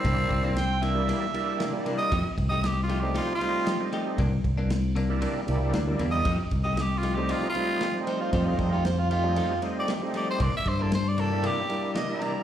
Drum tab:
RD |xxxxxxxx|xxxxxxxx|xxxxxxxx|xxxxxxxx|
SD |--o---o-|--o---o-|--o---o-|--o---o-|
BD |oo------|oo------|oo------|oo------|

RD |xxxxxxxx|xxxxxxxx|
SD |--o---o-|--o---o-|
BD |oo------|oo------|